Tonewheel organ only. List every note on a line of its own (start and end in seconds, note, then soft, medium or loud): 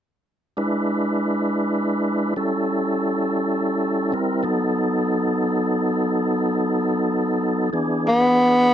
0.57 2.34 G#3 soft
0.57 2.34 D4 soft
0.57 2.34 E4 medium
0.57 2.34 B4 medium
2.36 4.12 G3 soft
2.36 4.13 C#4 soft
2.36 4.13 E4 soft
2.36 4.13 A4 soft
4.12 4.44 G3 medium
4.12 4.43 C4 soft
4.12 4.44 E4 medium
4.12 4.44 A#4 medium
4.43 7.70 F#3 medium
4.43 7.69 B3 medium
4.43 7.70 D#4 medium
4.43 7.70 A4 soft
7.73 8.74 E3 medium
7.73 8.74 B3 medium
7.73 8.74 D4 medium
7.73 8.74 G#4 medium